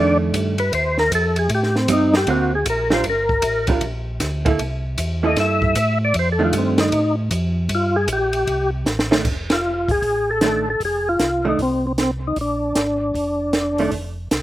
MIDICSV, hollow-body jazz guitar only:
0, 0, Header, 1, 2, 480
1, 0, Start_track
1, 0, Tempo, 388098
1, 1856, Time_signature, 4, 2, 24, 8
1, 17841, End_track
2, 0, Start_track
2, 0, Title_t, "Hollow-body jazz guitar"
2, 0, Program_c, 0, 26
2, 0, Note_on_c, 0, 51, 67
2, 0, Note_on_c, 0, 57, 71
2, 0, Note_on_c, 0, 62, 66
2, 668, Note_off_c, 0, 51, 0
2, 673, Note_off_c, 0, 57, 0
2, 677, Note_off_c, 0, 62, 0
2, 2331, Note_on_c, 0, 55, 58
2, 2345, Note_on_c, 0, 60, 65
2, 2345, Note_on_c, 0, 63, 64
2, 2611, Note_off_c, 0, 55, 0
2, 2618, Note_off_c, 0, 60, 0
2, 2618, Note_off_c, 0, 63, 0
2, 2813, Note_on_c, 0, 50, 52
2, 2823, Note_on_c, 0, 58, 67
2, 2827, Note_on_c, 0, 60, 64
2, 2827, Note_on_c, 0, 66, 66
2, 3092, Note_off_c, 0, 50, 0
2, 3096, Note_off_c, 0, 58, 0
2, 3098, Note_off_c, 0, 60, 0
2, 3098, Note_off_c, 0, 66, 0
2, 3593, Note_on_c, 0, 55, 68
2, 3603, Note_on_c, 0, 62, 71
2, 3609, Note_on_c, 0, 65, 67
2, 3610, Note_on_c, 0, 70, 72
2, 3751, Note_off_c, 0, 55, 0
2, 3756, Note_off_c, 0, 62, 0
2, 3759, Note_off_c, 0, 65, 0
2, 3760, Note_off_c, 0, 70, 0
2, 4557, Note_on_c, 0, 55, 52
2, 4562, Note_on_c, 0, 62, 54
2, 4573, Note_on_c, 0, 65, 57
2, 4573, Note_on_c, 0, 70, 62
2, 4712, Note_off_c, 0, 55, 0
2, 4715, Note_off_c, 0, 62, 0
2, 4720, Note_off_c, 0, 65, 0
2, 4720, Note_off_c, 0, 70, 0
2, 5506, Note_on_c, 0, 58, 68
2, 5516, Note_on_c, 0, 64, 74
2, 5519, Note_on_c, 0, 69, 75
2, 5666, Note_off_c, 0, 58, 0
2, 5671, Note_off_c, 0, 64, 0
2, 5672, Note_off_c, 0, 69, 0
2, 6470, Note_on_c, 0, 58, 65
2, 6476, Note_on_c, 0, 64, 73
2, 6484, Note_on_c, 0, 69, 73
2, 7088, Note_off_c, 0, 58, 0
2, 7091, Note_off_c, 0, 64, 0
2, 7096, Note_off_c, 0, 69, 0
2, 7904, Note_on_c, 0, 51, 79
2, 7913, Note_on_c, 0, 57, 79
2, 7919, Note_on_c, 0, 62, 77
2, 8524, Note_off_c, 0, 51, 0
2, 8528, Note_off_c, 0, 57, 0
2, 8531, Note_off_c, 0, 62, 0
2, 11269, Note_on_c, 0, 51, 83
2, 11272, Note_on_c, 0, 57, 86
2, 11283, Note_on_c, 0, 62, 78
2, 11423, Note_off_c, 0, 51, 0
2, 11424, Note_off_c, 0, 57, 0
2, 11430, Note_off_c, 0, 62, 0
2, 12876, Note_on_c, 0, 51, 58
2, 12885, Note_on_c, 0, 57, 63
2, 12893, Note_on_c, 0, 62, 66
2, 13158, Note_off_c, 0, 51, 0
2, 13162, Note_off_c, 0, 57, 0
2, 13166, Note_off_c, 0, 62, 0
2, 14158, Note_on_c, 0, 51, 54
2, 14162, Note_on_c, 0, 57, 70
2, 14167, Note_on_c, 0, 62, 64
2, 14311, Note_off_c, 0, 51, 0
2, 14313, Note_off_c, 0, 57, 0
2, 14316, Note_off_c, 0, 62, 0
2, 17058, Note_on_c, 0, 51, 65
2, 17066, Note_on_c, 0, 57, 77
2, 17073, Note_on_c, 0, 62, 74
2, 17208, Note_off_c, 0, 51, 0
2, 17212, Note_off_c, 0, 57, 0
2, 17215, Note_off_c, 0, 62, 0
2, 17841, End_track
0, 0, End_of_file